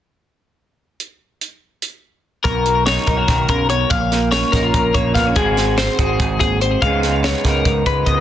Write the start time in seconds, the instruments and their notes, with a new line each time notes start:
1.00 closed hi-hat
1.41 closed hi-hat
1.82 closed hi-hat
2.44 picked electric bass B1, clean electric guitar B2 A#4, kick, closed hi-hat
2.66 clean electric guitar F#3, closed hi-hat
2.86 clean electric guitar D#4 C#5, snare, closed hi-hat
3.07 picked electric bass B1, clean electric guitar D#4 A#4, kick, closed hi-hat
3.17 clean electric guitar F#4
3.28 picked electric bass B1, clean electric guitar D#3, kick, snare, closed hi-hat
3.49 picked electric bass B1, clean electric guitar C#3 A#4, kick, closed hi-hat
3.70 clean electric guitar B2 C#5, closed hi-hat
3.90 picked electric bass A#1, clean electric guitar A#2 F5, kick, closed hi-hat
4.12 clean electric guitar A#3, snare, closed hi-hat
4.32 clean electric guitar C#4 C#5, snare, closed hi-hat
4.52 picked electric bass A#1, clean electric guitar D#4 A#4, kick, snare, closed hi-hat
4.63 clean electric guitar F4
4.74 picked electric bass A#1, clean electric guitar A#2, kick, closed hi-hat
4.94 picked electric bass A#1, clean electric guitar A#3 C#5, kick, closed hi-hat
5.14 picked electric bass A#1, clean electric guitar B3 F5, kick, snare, closed hi-hat
5.27 clean electric guitar C#4
5.36 picked electric bass G#1, clean electric guitar G#2 G#3 C4 F#4 G#4, kick, closed hi-hat
5.57 clean electric guitar G#3, snare, closed hi-hat
5.78 clean electric guitar C4 C5, snare, closed hi-hat
5.99 picked electric bass G#1, clean electric guitar F#4 G#4, kick, closed hi-hat
6.19 picked electric bass G#1, clean electric guitar G#2, kick, closed hi-hat
6.40 picked electric bass G#1, clean electric guitar A#2 G#4, kick, closed hi-hat
6.61 clean electric guitar C3 C5, closed hi-hat
6.82 picked electric bass C#2, clean electric guitar C#3 G#3 B3 D#4 G#4 F5, kick, closed hi-hat
7.03 clean electric guitar G#3, snare, closed hi-hat
7.24 clean electric guitar B3 C#5, snare, closed hi-hat
7.44 picked electric bass C#2, clean electric guitar D#4 A#4, kick, snare, closed hi-hat
7.65 picked electric bass C#2, clean electric guitar G#2, kick, closed hi-hat
7.86 picked electric bass C#2, clean electric guitar G#3 B4, kick, closed hi-hat
8.06 picked electric bass C#2, clean electric guitar B3 D#5, kick, closed hi-hat